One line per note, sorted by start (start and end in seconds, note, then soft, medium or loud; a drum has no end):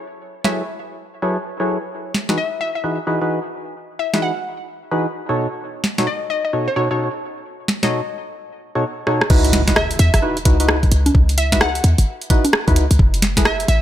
0.44 0.62 F#3 medium
0.44 0.62 E4 medium
0.44 0.62 G#4 medium
0.44 0.62 A4 medium
0.44 0.62 B4 medium
0.44 0.62 C#5 medium
0.44 0.76 E5 medium
0.44 snare soft
1.22 1.37 F#3 medium
1.22 1.37 E4 medium
1.22 1.37 G#4 medium
1.22 1.37 A4 medium
1.22 1.37 B4 medium
1.22 1.37 C#5 medium
1.60 1.78 F#3 medium
1.60 1.78 E4 medium
1.60 1.78 G#4 medium
1.60 1.78 A4 medium
1.60 1.78 B4 medium
1.60 1.78 C#5 loud
2.14 snare soft
2.29 2.38 E3 medium
2.29 2.38 D#4 medium
2.29 2.38 F#4 medium
2.29 2.38 G#4 medium
2.29 2.38 B4 medium
2.29 snare soft
2.38 2.52 E5 medium
2.61 2.70 E5 medium
2.75 2.81 E5 medium
2.84 2.99 E3 medium
2.84 2.99 D#4 medium
2.84 2.99 F#4 medium
2.84 2.99 G#4 medium
2.84 2.99 B4 medium
3.07 3.19 E3 medium
3.07 3.19 D#4 medium
3.07 3.19 F#4 medium
3.07 3.19 G#4 medium
3.07 3.19 B4 loud
3.21 3.39 E3 medium
3.21 3.39 D#4 medium
3.21 3.39 F#4 medium
3.21 3.39 G#4 medium
3.21 3.39 B4 medium
3.99 4.09 E5 medium
4.14 4.31 E3 medium
4.14 4.31 D#4 medium
4.14 4.31 F#4 medium
4.14 4.31 G#4 medium
4.14 4.31 B4 medium
4.14 4.19 E5 medium
4.14 snare soft
4.22 4.88 F#5 medium
4.91 5.06 E3 medium
4.91 5.06 D#4 medium
4.91 5.06 F#4 medium
4.91 5.06 G#4 medium
4.91 5.06 B4 loud
5.29 5.47 B2 medium
5.29 5.47 D#4 medium
5.29 5.47 F#4 medium
5.29 5.47 A4 medium
5.29 5.47 C#5 medium
5.84 snare soft
5.98 6.07 B2 medium
5.98 6.07 D#4 medium
5.98 6.07 F#4 medium
5.98 6.07 A4 medium
5.98 6.07 C#5 medium
5.98 snare soft
6.07 6.21 D#5 medium
6.30 6.39 D#5 medium
6.45 6.50 D#5 medium
6.53 6.68 B2 medium
6.53 6.68 D#4 medium
6.53 6.68 F#4 medium
6.53 6.68 A4 medium
6.53 6.68 C#5 medium
6.68 6.74 C#5 medium
6.76 6.89 B2 medium
6.76 6.89 D#4 medium
6.76 6.89 F#4 medium
6.76 6.89 A4 medium
6.76 6.89 C#5 loud
6.76 6.86 C#5 medium
6.91 7.08 B2 medium
6.91 7.08 D#4 medium
6.91 7.08 F#4 medium
6.91 7.08 A4 medium
6.91 7.08 C#5 medium
6.91 6.96 C#5 medium
7.68 snare soft
7.83 8.01 B2 medium
7.83 8.01 D#4 medium
7.83 8.01 F#4 medium
7.83 8.01 A4 medium
7.83 8.01 C#5 medium
7.83 8.15 D#5 medium
7.83 snare soft
8.75 8.84 B2 medium
8.75 8.84 D#4 medium
8.75 8.84 F#4 medium
8.75 8.84 A4 medium
8.75 8.84 C#5 loud
9.07 9.22 B2 medium
9.07 9.22 D#4 medium
9.07 9.22 F#4 medium
9.07 9.22 A4 medium
9.07 9.22 C#5 loud
9.07 cross-stick medium
9.21 cross-stick medium
9.30 9.96 C#2 loud
9.30 9.62 D#4 loud
9.30 9.62 E4 loud
9.30 9.62 F#4 medium
9.30 9.62 B4 loud
9.30 kick loud
9.30 crash loud
9.30 impact medium
9.44 closed hi-hat medium
9.53 snare medium
9.53 closed hi-hat loud
9.68 9.76 D#4 medium
9.68 9.76 E4 medium
9.68 9.76 F#4 medium
9.68 9.76 B4 medium
9.68 kick medium
9.68 snare medium
9.68 closed hi-hat medium
9.76 9.90 E5 medium
9.76 cross-stick loud
9.91 closed hi-hat medium
9.99 10.10 E2 loud
9.99 10.09 E5 medium
9.99 closed hi-hat medium
10.14 10.20 G#1 loud
10.14 10.19 E5 medium
10.14 cross-stick medium
10.14 closed hi-hat medium
10.22 10.37 D#4 medium
10.22 10.37 E4 medium
10.22 10.37 F#4 medium
10.22 10.37 B4 medium
10.37 closed hi-hat soft
10.45 10.88 C#2 medium
10.45 10.58 D#4 loud
10.45 10.58 E4 medium
10.45 10.58 F#4 medium
10.45 10.58 B4 loud
10.45 kick loud
10.45 closed hi-hat loud
10.60 10.78 D#4 medium
10.60 10.78 E4 medium
10.60 10.78 F#4 medium
10.60 10.78 B4 medium
10.60 closed hi-hat medium
10.69 cross-stick loud
10.83 kick loud
10.83 closed hi-hat soft
10.92 11.10 C#2 medium
10.92 closed hi-hat medium
11.06 closed hi-hat medium
11.06 high conga medium
11.15 11.80 C#2 loud
11.15 kick loud
11.29 closed hi-hat medium
11.38 11.47 E5 medium
11.38 closed hi-hat loud
11.52 11.70 D#4 medium
11.52 11.70 E4 medium
11.52 11.70 F#4 medium
11.52 11.70 B4 medium
11.52 11.58 E5 medium
11.52 kick medium
11.52 snare medium
11.52 closed hi-hat medium
11.61 12.27 F#5 loud
11.61 cross-stick loud
11.75 closed hi-hat medium
11.84 11.95 E2 loud
11.84 closed hi-hat medium
11.98 12.05 G#1 loud
11.98 closed hi-hat medium
12.21 closed hi-hat soft
12.30 12.45 D#4 medium
12.30 12.45 E4 medium
12.30 12.45 F#4 medium
12.30 12.45 B4 loud
12.30 kick loud
12.30 closed hi-hat loud
12.45 closed hi-hat medium
12.45 high conga medium
12.53 cross-stick loud
12.68 12.78 E2 medium
12.68 12.85 D#4 medium
12.68 12.85 E4 medium
12.68 12.85 F#4 medium
12.68 12.85 B4 loud
12.68 kick loud
12.68 closed hi-hat soft
12.76 12.87 C#2 medium
12.76 closed hi-hat loud
12.91 12.97 C#2 medium
12.91 closed hi-hat medium
12.99 13.65 F#1 loud
12.99 kick loud
13.14 closed hi-hat soft
13.22 snare medium
13.22 closed hi-hat loud
13.37 13.46 E4 medium
13.37 13.46 G#4 medium
13.37 13.46 A4 medium
13.37 13.46 B4 medium
13.37 kick medium
13.37 snare medium
13.37 closed hi-hat medium
13.45 13.59 E5 medium
13.45 cross-stick loud
13.60 closed hi-hat medium
13.68 13.79 A1 loud
13.68 13.78 E5 medium
13.68 closed hi-hat medium